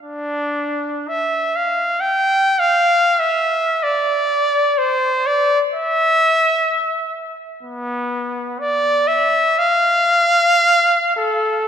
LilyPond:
\new Staff \with { instrumentName = "Trumpet" } { \time 4/4 \key e \phrygian \tempo 4 = 62 d'4 e''8 f''8 \tuplet 3/2 { g''4 f''8~ f''8 e''4 } | d''4 c''8 d''8 e''4. r8 | b4 d''8 e''8 f''4. a'8 | }